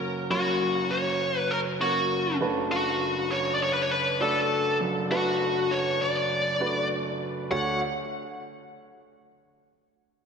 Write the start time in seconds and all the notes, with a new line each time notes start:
Already playing: F#1 F#2 A#3 C#4 F#4 C#5
0.30 F#1 F#2 A#3 C#4 F#4 C#5
0.91 C#5
1.39 B4
1.51 A#4
1.80 A#3 C#4 F#4 C#5
2.40 F#1 F#2 A3 D4 F#4 B4
2.71 F#4
3.31 C#5
3.55 D5
3.63 C#5
3.73 B4
3.82 C#5
3.91 B4
4.20 A3 D4 F#4 A4 D5
4.80 F#1 F#2
5.10 A3 D4 F#4 B4
5.71 C#5
6.02 D5
6.60 A3 D4 F#4 B4
7.51 D2 A3 D4 F#4 C#5 F#5